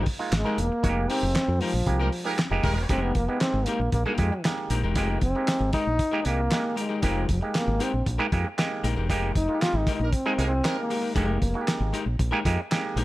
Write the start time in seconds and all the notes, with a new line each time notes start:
0.06 muted hollow-body jazz guitar stroke, kick, open hi-hat
0.19 G#3 A#3 D#4 F4, muted hollow-body jazz guitar stroke
0.32 G#1 G#3, muted hollow-body jazz guitar stroke, snare, clap, closed hi-hat
0.45 G#3 A#3 D#4 G4 A#4
0.58 E1 A#3, muted hollow-body jazz guitar stroke, closed hi-hat
0.72 muted hollow-body jazz guitar stroke
0.83 F1 G#3 A#3 D#4 F#4, kick, closed hi-hat
0.89 G4
1.10 G#3 C4 D#4 G4 A#4, open hi-hat
1.23 F1
1.35 muted fingered electric bass stroke, snare, clap, closed hi-hat
1.48 F2, muted hollow-body jazz guitar stroke
1.61 F3 G#3 D#4 G4 A#4, open hi-hat
1.74 A#1, muted hollow-body jazz guitar stroke
1.86 C2 G#3 A#3 D#4 G4, muted hollow-body jazz guitar stroke, kick, closed hi-hat
1.99 G3 G#3 A#3 D#4 G4 A#4
2.12 muted hollow-body jazz guitar stroke, open hi-hat
2.24 G3 G#3 A#3 D#4 G4 A#4, muted hollow-body jazz guitar stroke
2.38 muted hollow-body jazz guitar stroke, snare, clap, closed hi-hat
2.51 F1 G#3 A#3 D#4 G4, muted hollow-body jazz guitar stroke
2.63 D#1 G3 G#3 A#3 D#4 G4 A#4, kick, open hi-hat
2.76 E1, muted hollow-body jazz guitar stroke
2.89 F1 G#3 A#3 C4 D#4 G4 A#4, kick, closed hi-hat
3.03 B3
3.15 F1 A#3, kick, closed hi-hat
3.28 G#3 A#3 B3 D#4 G4, muted hollow-body jazz guitar stroke
3.40 C4, muted hollow-body jazz guitar stroke, snare, clap, closed hi-hat
3.54 G#1, muted hollow-body jazz guitar stroke
3.66 G#3 A#3 D#4 G4 A#4, closed hi-hat
3.80 A#1, muted hollow-body jazz guitar stroke
3.92 A#1 A#3, muted hollow-body jazz guitar stroke, kick, closed hi-hat
4.06 G#3 A#3 D#4 G4 G#4 A#4
4.18 F2 G#3 A#3 D#4 G4, muted hollow-body jazz guitar stroke, kick, closed hi-hat
4.32 muted hollow-body jazz guitar stroke
4.44 G#3 A#3 D#4 G4, muted hollow-body jazz guitar stroke, snare, clap, closed hi-hat
4.58 muted hollow-body jazz guitar stroke
4.70 A#1 G#3 D#4 G4 A#4, closed hi-hat
4.83 E1 G#3 D#4 G4 A#4
4.96 F1 G#3 A#3 D#4 G4 A#4, kick, closed hi-hat
5.21 F1 C4, kick, closed hi-hat
5.35 G#3 A#3 D#4 G4, muted hollow-body jazz guitar stroke
5.47 muted hollow-body jazz guitar stroke, snare, clap, closed hi-hat
5.60 G#1, muted hollow-body jazz guitar stroke
5.73 G#3 D#4 G4 A#4, kick, closed hi-hat
5.86 A#1, muted hollow-body jazz guitar stroke
5.99 muted hollow-body jazz guitar stroke, kick, closed hi-hat
6.11 G#3 A#3 D#4 G4 A#4
6.25 C2 G#3 A#3 D#4 G4, closed hi-hat
6.37 muted hollow-body jazz guitar stroke
6.50 G#3 A#3 D#4 G4, muted hollow-body jazz guitar stroke, snare, clap, closed hi-hat
6.63 muted hollow-body jazz guitar stroke
6.76 G#3 D#4 G4 A#4, closed hi-hat
6.89 G#3 D#4 G4 A#4
7.02 F1 F3 G#3 A#3 D#4 G4 A#4, kick, closed hi-hat
7.29 F1 F3, kick, closed hi-hat
7.41 G#3 A#3 D#4 G4, muted hollow-body jazz guitar stroke
7.54 A#3, muted hollow-body jazz guitar stroke, snare, clap, closed hi-hat
7.66 G#1, muted hollow-body jazz guitar stroke
7.80 G#3 C4 D#4 G4 A#4, closed hi-hat
7.93 A#1, muted hollow-body jazz guitar stroke
8.06 A#1, muted hollow-body jazz guitar stroke, kick, closed hi-hat
8.18 G#3 A#3 D#4 G4 A#4
8.31 F2 G#3 A#3 D#4 G4, muted hollow-body jazz guitar stroke, kick, closed hi-hat
8.45 muted hollow-body jazz guitar stroke
8.58 G#3 A#3 D#4 G4, muted hollow-body jazz guitar stroke, snare, clap, closed hi-hat
8.71 muted hollow-body jazz guitar stroke
8.83 A#1 G#3 D#4 G4 A#4, closed hi-hat
8.96 E1 G#3 D#4 G4 A#4
9.09 F1 G#3 A#3 D#4 G4 A#4, kick, closed hi-hat
9.35 F1 D#4, kick, closed hi-hat
9.48 G#3 A#3 D#4 F4, muted hollow-body jazz guitar stroke
9.54 G4
9.61 F4, muted hollow-body jazz guitar stroke, snare, clap, closed hi-hat
9.73 G#1, muted hollow-body jazz guitar stroke
9.78 D#4
9.87 G#3 D#4 G4 A#4, kick, closed hi-hat
9.95 D#4
10.00 A#1 G3 A#3 D#4 A#4, muted hollow-body jazz guitar stroke
10.13 C4, muted hollow-body jazz guitar stroke, kick, closed hi-hat
10.26 G#3 A#3 D#4 G4 G#4 A#4
10.38 C2 G3 G#3 A#3 D#4 G#4 A#4, closed hi-hat
10.47 C4
10.51 muted hollow-body jazz guitar stroke
10.64 G3 G#3 A#3 D#4 G4 A#4, muted hollow-body jazz guitar stroke, snare, clap, closed hi-hat
10.77 A#3, muted hollow-body jazz guitar stroke
10.90 G#3 D#4 G4 A#4, open hi-hat
11.02 G#3 D#4 G4 A#4
11.15 F1 G#3 A#3 D#4 G4 A#4, kick, closed hi-hat
11.32 A#3
11.42 F1, kick, closed hi-hat
11.54 G#3 A#3 D#4 F#4, muted hollow-body jazz guitar stroke
11.61 G4
11.67 muted hollow-body jazz guitar stroke, snare, clap, closed hi-hat
11.80 G#1, muted hollow-body jazz guitar stroke
11.93 G#3 D#4 G4 A#4, closed hi-hat
12.06 A#1, muted hollow-body jazz guitar stroke
12.19 A#1, muted hollow-body jazz guitar stroke, kick, closed hi-hat
12.31 G#3 A#3 D#4 G4 A#4
12.45 F2 G#3 A#3 D#4 G4, muted hollow-body jazz guitar stroke, kick, closed hi-hat
12.58 muted hollow-body jazz guitar stroke
12.71 G#3 A#3 D#4 G4, muted hollow-body jazz guitar stroke, snare, clap, closed hi-hat
12.83 muted hollow-body jazz guitar stroke
12.96 A#1 G#3 D#4 G4 A#4, closed hi-hat